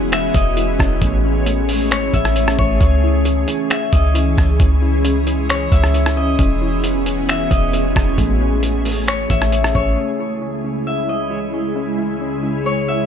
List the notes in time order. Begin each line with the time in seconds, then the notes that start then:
Already playing: E1 E3 G#3 B3 C#4 E4 F#4 G#4 C#5 D#5
0.12 E5, finger snap, closed hi-hat
0.34 E1 D#5, kick, closed hi-hat
0.57 E4, closed hi-hat
0.79 E1 C#4, kick, cross-stick
1.02 A1 A3 C#4 G#4, kick, closed hi-hat
1.24 C#4
1.46 A3, closed hi-hat
1.69 A3, open hi-hat
1.91 C#5, finger snap, closed hi-hat
2.14 A1 E5, kick, closed hi-hat
2.25 cross-stick
2.36 C#4, closed hi-hat
2.48 cross-stick
2.58 A1 A3 C#5, kick
2.80 C#2 E3 G#3 C#4 E4, kick, closed hi-hat
3.03 E4
3.25 C#4, closed hi-hat
3.48 C#4, closed hi-hat
3.70 E5, finger snap, closed hi-hat
3.93 C#2 D#5, kick, closed hi-hat
4.14 E4, closed hi-hat
4.37 C#2 C#4, kick, cross-stick
4.59 C#2 C#4, kick, closed hi-hat
4.82 E4
5.05 C#4, closed hi-hat
5.27 C#4, closed hi-hat
5.49 C#5, finger snap, closed hi-hat
5.72 C#2 E5, kick, closed hi-hat
5.84 cross-stick
5.94 E4, closed hi-hat
6.06 cross-stick
6.16 C#4 D#5
6.39 E1 B3 C#4 F#4 G#4 C#5, kick, closed hi-hat
6.62 E4
6.84 C#4, closed hi-hat
7.06 C#4, closed hi-hat
7.29 E5, finger snap, closed hi-hat
7.51 E1 D#5, kick, closed hi-hat
7.73 E4, closed hi-hat
7.95 E1 C#4, kick, cross-stick
8.18 A1 A3 G#4, kick, closed hi-hat
8.41 C#4
8.62 A3, closed hi-hat
8.85 A3, open hi-hat
9.08 C#5, finger snap, closed hi-hat
9.30 A1 E5, kick, closed hi-hat
9.42 cross-stick
9.52 C#4, closed hi-hat
9.64 cross-stick
9.75 A1 A3 C#5, kick
9.97 C#2 C#3 G#3 C#4 E4 G#4 C#5
10.20 E4
10.42 C#4
10.64 C#4
10.87 E5
11.09 D#5
11.30 E4
11.54 C#4
11.76 C#4
11.98 E4
12.21 C#4
12.43 C#4
12.66 C#5
12.88 E5